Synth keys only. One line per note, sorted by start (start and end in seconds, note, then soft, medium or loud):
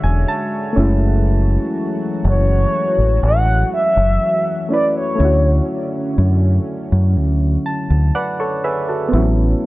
0.00 0.74 G#3 medium
0.00 0.73 C#4 medium
0.00 0.74 D4 medium
0.00 0.76 F#4 medium
0.00 0.79 E5 medium
0.00 0.26 G#5 medium
0.28 1.23 A5 medium
0.73 4.64 A3 medium
0.73 4.66 C#4 medium
0.79 4.69 G#3 medium
0.79 4.68 E4 medium
4.69 5.14 A3 soft
4.69 5.17 C#4 soft
4.69 5.20 E4 soft
4.73 5.21 B4 medium
5.15 9.07 A3 medium
5.15 9.09 C#4 medium
5.22 9.10 E4 medium
5.22 8.13 F#4 medium
7.66 8.12 A5 medium
8.15 8.39 B4 soft
8.15 8.38 D5 medium
8.15 8.61 F#5 medium
8.40 8.63 A4 medium
8.40 8.63 C#5 medium
8.64 8.88 G#4 medium
8.64 8.88 B4 medium
8.64 9.10 E5 medium
8.89 9.36 F#4 soft
8.89 9.35 A4 medium
9.08 9.66 B3 medium
9.08 9.19 C4 medium
9.15 9.66 F#3 medium
9.15 9.66 C#4 medium
9.15 9.66 E4 medium